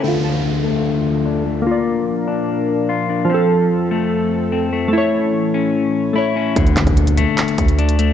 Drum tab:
HH |----------------|----------------|----------------|----------------|
CP |----------------|----------------|----------------|----------------|
BD |----------------|----------------|----------------|----------------|

HH |xxxxxxx-xxxxxxx-|
CP |--x-----x-------|
BD |o-oo------o-----|